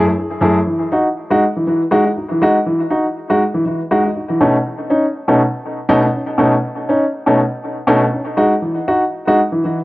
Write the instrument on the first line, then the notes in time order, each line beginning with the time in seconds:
grand piano
0.07 E4 G#4
0.18 E4 G#4
0.41 F#2 A3 E4 G#4
0.67 E3
0.92 D#4 F#4
1.30 G#3 D#4 F#4
1.56 E3
1.67 E3
1.91 G#3 D#4 F#4
2.05 D#4 F#4
2.17 D#4 F#4
2.31 E3
2.42 G#3 D#4 F#4
2.66 E3
2.91 D#4 F#4
3.30 G#3 D#4 F#4
3.54 E3
3.66 E3
3.91 G#3 D#4 F#4
4.04 D#4 F#4
4.16 D#4 F#4
4.30 E3
4.41 B2 A3 C#4 D#4
4.90 C#4 D#4
5.28 B2 A3 C#4 D#4
5.89 B2 A3 C#4 D#4
6.03 C#4 D#4
6.13 C#4
6.38 B2 A3 C#4 D#4
6.89 C#4 D#4
7.26 B2 A3 C#4 D#4
7.87 B2 A3 C#4 D#4
8.02 C#4 D#4
8.12 C#4 D#4
8.37 G#3 D#4 F#4
8.62 E3
8.88 D#4 F#4
9.27 G#3 D#4 F#4
9.52 E3
9.64 E3